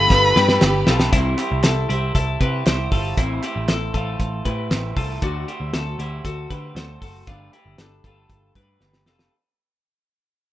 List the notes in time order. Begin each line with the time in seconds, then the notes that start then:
Already playing: F4 G4 A4 B4 B5
0.09 G1 A3 D4 G4 B4, kick, snare
0.35 G2 A3 D4 G4 B4, snare
0.49 snare
0.61 G1 G4, snare, clap
0.87 B1 A3 D4 F4 G4 A4 B4, snare
1.00 snare
1.12 C2 C3 E3 G3 C4 E4 C5, kick, closed hi-hat
1.37 G3 C4 E4 G4 C5, clap, closed hi-hat
1.52 C2
1.63 C2 E4 A4, snare, clap, closed hi-hat
1.88 C2 G3 C4 E4 G4 C5, closed hi-hat
2.15 C2 E4 A4, kick, closed hi-hat
2.40 C3 G3 C4 E4 G4 B4 C5, kick, closed hi-hat
2.66 C2 G3 C4 E4 G4 C5, snare, clap, closed hi-hat
2.92 G1 G3 C4 E4 F4 A4 C5, kick, open hi-hat
3.17 A1 A2 E3 A3 C4 E4 C5, kick, closed hi-hat
3.43 A3 C4 E4 G4 C5, clap, closed hi-hat
3.56 A1
3.68 A1 E4 A4, snare, clap, closed hi-hat
3.94 A1 A3 C4 E4 F4 A4 C5, kick, closed hi-hat
4.20 A1, kick, closed hi-hat
4.45 A2 A3 C4 E4 G4 B4 C5, kick, closed hi-hat
4.70 A1 A3 C4 E4 C5, snare, clap, closed hi-hat
4.96 C2 A3 C4 E4 F4 A4 C5, kick, open hi-hat
5.21 D2 D3 A3 C4 D4 F#4 C5, kick, closed hi-hat
5.47 A3 C4 E4 F#4 G4 C5, closed hi-hat
5.60 D2
5.73 D2 F#4 A4, snare, closed hi-hat
5.98 D2 A3 C4 E4 F#4 G4 C5, closed hi-hat
6.25 D2 F#4 A4, kick, closed hi-hat
6.50 D3 A3 C4 F#4 G4 B4 C5, kick, closed hi-hat
6.75 D2 A3 C4 F#4 A4 C5, snare, closed hi-hat
7.02 F#1 A3 C4 F#4 A4 C5, kick, open hi-hat
7.27 G1 G3 A3 D4 F4 G4 B4, kick, closed hi-hat
7.53 A3 D4 E4 G4 B4, closed hi-hat
7.66 G1
7.78 G1 D4 A4, snare, closed hi-hat
8.04 G1 A3 D4 F4 G4 A4 B4, kick, closed hi-hat
8.29 G1, kick, closed hi-hat
8.55 G2 A3 D4 G4 B4, kick, closed hi-hat
8.80 G1 A3 D4 G4 B4, snare
8.94 snare
9.06 F1 A3 D4 F4 G4 A4 B4, snare
9.19 snare